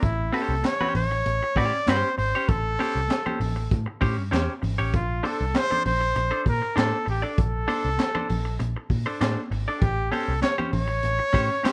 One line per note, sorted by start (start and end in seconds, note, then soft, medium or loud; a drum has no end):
0.02 0.30 A1 loud
0.02 0.35 E4 loud
0.02 kick loud
0.02 closed hi-hat medium
0.02 muted conga soft
0.32 0.54 C#4 medium
0.32 0.54 G4 loud
0.32 0.68 A4 loud
0.32 0.54 C5 medium
0.32 open hi-hat medium
0.32 high conga medium
0.49 0.62 C2 medium
0.63 0.95 C#5 loud
0.63 muted clean electric guitar stroke soft
0.63 snare loud
0.63 clap medium
0.63 closed hi-hat medium
0.63 high conga medium
0.81 0.95 C#4 medium
0.81 0.95 G4 medium
0.81 0.96 C5 medium
0.81 high conga medium
0.81 low conga medium
0.95 1.22 A1 medium
0.95 1.58 C#5 loud
0.95 open hi-hat medium
0.95 muted conga soft
0.95 low conga medium
1.11 muted clean electric guitar stroke soft
1.26 1.40 A1 loud
1.26 closed hi-hat loud
1.26 muted conga soft
1.43 muted clean electric guitar stroke soft
1.56 1.70 A2 medium
1.56 1.77 C#4 medium
1.56 1.73 G4 loud
1.56 1.73 C5 loud
1.56 1.90 D5 loud
1.56 kick loud
1.56 open hi-hat medium
1.56 muted conga soft
1.74 muted clean electric guitar stroke soft
1.87 2.02 G2 loud
1.87 2.08 C#4 medium
1.87 2.09 G4 loud
1.87 2.17 C5 loud
1.87 2.09 C5 loud
1.87 snare loud
1.87 clap loud
1.87 closed hi-hat loud
1.87 muted conga soft
1.87 high conga medium
2.17 2.32 G#1 medium
2.17 2.50 C5 loud
2.17 muted clean electric guitar stroke soft
2.17 open hi-hat medium
2.17 muted conga soft
2.35 2.50 C#4 medium
2.35 2.49 G4 medium
2.35 2.49 C#5 medium
2.49 2.75 A1 loud
2.49 3.71 A4 loud
2.49 kick loud
2.49 closed hi-hat medium
2.49 muted conga soft
2.79 2.99 C#4 medium
2.79 3.00 G4 loud
2.79 3.00 C5 medium
2.79 open hi-hat medium
2.79 muted conga soft
2.79 high conga medium
2.95 3.08 C2 medium
3.08 muted clean electric guitar stroke soft
3.08 snare medium
3.08 clap medium
3.08 closed hi-hat medium
3.08 high conga medium
3.26 3.39 C#4 medium
3.26 3.40 G4 medium
3.26 3.39 C5 medium
3.26 high conga medium
3.26 low conga medium
3.40 3.67 A1 medium
3.40 muted clean electric guitar stroke medium
3.40 open hi-hat medium
3.40 low conga medium
3.56 muted clean electric guitar stroke medium
3.71 3.85 A2 loud
3.71 kick loud
3.71 closed hi-hat medium
3.71 muted conga soft
3.86 muted clean electric guitar stroke soft
4.01 4.18 A2 medium
4.01 4.21 C#4 medium
4.01 4.17 G4 loud
4.01 4.16 C5 loud
4.01 kick medium
4.01 open hi-hat medium
4.17 4.31 G2 loud
4.17 muted clean electric guitar stroke soft
4.31 4.47 E2 medium
4.31 4.52 C#4 medium
4.31 4.52 G4 loud
4.31 4.53 C5 medium
4.31 snare loud
4.31 clap medium
4.31 closed hi-hat loud
4.31 high conga medium
4.62 4.77 G#1 loud
4.62 muted clean electric guitar stroke soft
4.62 open hi-hat medium
4.62 low conga medium
4.78 4.92 A1 loud
4.78 4.94 C#4 medium
4.78 4.93 G4 medium
4.78 4.93 C#5 medium
4.94 5.20 A#1 loud
4.94 5.29 F4 medium
4.94 kick loud
4.94 closed hi-hat loud
5.23 5.44 D4 medium
5.23 5.44 A4 medium
5.23 5.44 C5 medium
5.23 open hi-hat medium
5.23 high conga medium
5.27 5.59 A4 loud
5.41 5.53 C2 medium
5.54 5.85 C5 loud
5.54 muted clean electric guitar stroke medium
5.54 snare loud
5.54 clap medium
5.54 closed hi-hat medium
5.54 high conga medium
5.70 5.84 D4 medium
5.70 5.84 A4 medium
5.70 5.85 C5 medium
5.70 high conga medium
5.70 low conga medium
5.85 6.12 A#1 medium
5.85 6.43 C5 loud
5.85 muted clean electric guitar stroke soft
5.85 open hi-hat medium
5.85 muted conga soft
5.85 low conga medium
6.01 muted clean electric guitar stroke soft
6.16 6.30 A#1 medium
6.16 muted clean electric guitar stroke soft
6.16 closed hi-hat loud
6.16 muted conga soft
6.31 6.45 D4 medium
6.31 6.45 A4 medium
6.31 6.45 C5 medium
6.46 6.60 A#2 medium
6.46 6.79 A#4 loud
6.46 muted clean electric guitar stroke soft
6.46 kick loud
6.46 open hi-hat medium
6.46 muted conga soft
6.62 muted clean electric guitar stroke soft
6.76 6.91 A2 loud
6.76 6.97 D4 medium
6.76 6.97 A4 medium
6.76 7.08 A4 loud
6.76 6.97 C5 medium
6.76 snare loud
6.76 clap loud
6.76 closed hi-hat medium
6.76 high conga medium
7.06 7.22 A1 loud
7.06 muted clean electric guitar stroke soft
7.06 open hi-hat medium
7.10 7.23 G4 medium
7.22 7.38 D4 medium
7.22 7.38 A4 medium
7.22 7.37 D5 medium
7.38 7.65 A#1 loud
7.38 8.57 A4 loud
7.38 kick loud
7.38 closed hi-hat medium
7.68 7.88 D4 medium
7.68 7.88 A4 loud
7.68 7.89 C5 loud
7.68 open hi-hat medium
7.68 high conga medium
7.85 7.97 C2 medium
7.98 muted clean electric guitar stroke soft
7.98 snare loud
7.98 clap medium
7.98 closed hi-hat medium
7.98 high conga medium
8.15 8.28 D4 medium
8.15 8.28 A4 medium
8.15 8.29 C5 medium
8.15 high conga medium
8.15 low conga medium
8.29 8.57 A#1 medium
8.29 muted clean electric guitar stroke soft
8.29 open hi-hat medium
8.29 muted conga soft
8.29 low conga medium
8.45 muted clean electric guitar stroke soft
8.59 8.74 A#1 loud
8.59 muted clean electric guitar stroke soft
8.59 closed hi-hat medium
8.59 muted conga soft
8.76 muted clean electric guitar stroke soft
8.90 9.04 A#2 loud
8.90 kick loud
8.90 open hi-hat medium
8.90 muted conga soft
9.06 9.19 D4 medium
9.06 9.20 A4 medium
9.06 9.20 C5 medium
9.21 9.35 A2 medium
9.21 9.41 D4 medium
9.21 9.41 A4 loud
9.21 9.42 C5 loud
9.21 snare loud
9.21 clap loud
9.21 closed hi-hat loud
9.21 muted conga soft
9.21 high conga medium
9.51 9.65 G#1 medium
9.51 muted clean electric guitar stroke soft
9.51 open hi-hat medium
9.68 9.83 D4 medium
9.68 9.83 A4 medium
9.68 9.82 D5 medium
9.81 10.09 A1 loud
9.81 10.13 G4 loud
9.81 kick loud
9.81 closed hi-hat medium
9.81 muted conga soft
10.12 10.32 C#4 medium
10.12 10.33 G4 medium
10.12 10.41 A4 loud
10.12 10.33 C5 medium
10.12 open hi-hat medium
10.12 high conga medium
10.28 10.41 C2 medium
10.41 10.56 C#5 loud
10.41 muted clean electric guitar stroke soft
10.41 snare loud
10.41 clap medium
10.41 closed hi-hat medium
10.41 muted conga soft
10.41 high conga medium
10.58 10.71 C#4 medium
10.58 10.71 G4 medium
10.58 10.72 C5 medium
10.58 high conga medium
10.58 low conga medium
10.72 11.00 A1 medium
10.72 11.67 C#5 loud
10.72 muted clean electric guitar stroke soft
10.72 open hi-hat medium
10.72 muted conga soft
10.72 low conga medium
10.88 muted clean electric guitar stroke medium
11.03 11.18 A1 medium
11.03 closed hi-hat loud
11.03 muted conga soft
11.19 muted clean electric guitar stroke soft
11.33 11.48 A2 loud
11.33 11.54 C#4 medium
11.33 11.50 G4 loud
11.33 11.49 C5 loud
11.33 kick loud
11.33 open hi-hat medium
11.33 muted conga soft
11.50 muted clean electric guitar stroke medium
11.63 11.72 C#4 medium
11.63 11.72 G4 loud
11.63 11.72 C5 medium
11.63 snare loud
11.63 clap loud
11.63 closed hi-hat loud
11.63 high conga medium